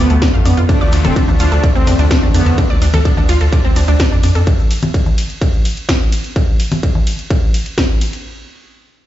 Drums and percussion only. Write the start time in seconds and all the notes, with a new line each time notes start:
0.10 closed hi-hat, shaker
0.22 kick, snare, closed hi-hat, shaker
0.34 shaker
0.45 open hi-hat, shaker
0.57 closed hi-hat, shaker
0.69 kick, closed hi-hat, ride, shaker
0.81 shaker
0.92 open hi-hat, ride, shaker
1.04 closed hi-hat, low conga, shaker
1.16 kick, closed hi-hat, ride, shaker
1.28 low conga, shaker
1.39 open hi-hat, ride, shaker
1.52 closed hi-hat, shaker
1.64 kick, closed hi-hat, ride, shaker
1.75 shaker
1.87 open hi-hat, ride, shaker
1.99 closed hi-hat, shaker
2.10 kick, snare, closed hi-hat, ride, shaker
2.23 shaker
2.34 open hi-hat, ride, shaker
2.46 closed hi-hat, shaker
2.58 kick, closed hi-hat, ride, shaker
2.69 shaker
2.82 open hi-hat, ride, shaker
2.93 open hi-hat, low conga, shaker
3.05 kick, closed hi-hat, ride, shaker
3.17 low conga, shaker
3.29 open hi-hat, ride, shaker
3.41 closed hi-hat, shaker
3.52 kick, closed hi-hat, ride, shaker
3.65 shaker
3.76 open hi-hat, ride, shaker
3.88 closed hi-hat, shaker
3.99 kick, snare, closed hi-hat, ride, shaker
4.12 shaker
4.23 open hi-hat, ride, shaker
4.35 closed hi-hat, shaker
4.46 kick, closed hi-hat, ride, shaker
4.59 shaker
4.71 open hi-hat, ride, shaker
4.82 closed hi-hat, low conga, shaker
4.94 kick, closed hi-hat, ride, shaker
5.06 low conga, shaker
5.18 open hi-hat, ride, shaker
5.30 closed hi-hat, shaker
5.42 kick, closed hi-hat, ride, shaker
5.53 shaker
5.65 open hi-hat, ride, shaker
5.77 closed hi-hat, shaker
5.88 kick, snare, closed hi-hat, ride, shaker
6.01 shaker
6.12 open hi-hat, ride, shaker
6.24 closed hi-hat, shaker
6.36 kick, closed hi-hat, ride
6.60 open hi-hat, ride
6.72 open hi-hat, low conga
6.83 kick, closed hi-hat, ride
6.95 low conga
7.07 open hi-hat, ride
7.19 closed hi-hat
7.30 kick, closed hi-hat, ride
7.54 open hi-hat, ride
7.66 closed hi-hat
7.78 kick, snare, closed hi-hat, ride
8.01 open hi-hat, ride
8.13 closed hi-hat